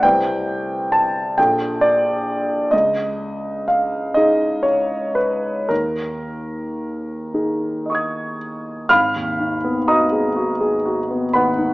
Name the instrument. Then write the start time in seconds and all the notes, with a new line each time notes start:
grand piano
0.03 C2 C4 B4 G5
0.92 A5
1.38 A#1 F4 A4 G5
1.81 D5
2.71 C#2 D#5
3.68 F5
4.14 D#4 G#4 D#5
4.63 C#5
5.15 B4
5.69 D#2 A#4
7.34 D#4 G#4
7.86 D#5
7.90 C#6 D#6
7.95 G#6
8.89 G#1 F5 B5 F6
9.16 D#2
9.40 D#3
9.65 B3
9.88 F#4 D#5 A#5 D#6
10.12 G#4
10.36 F#4
10.61 G#4
10.86 F#4
11.11 B3
11.34 D#2 B4 F#5 B5
11.58 D#3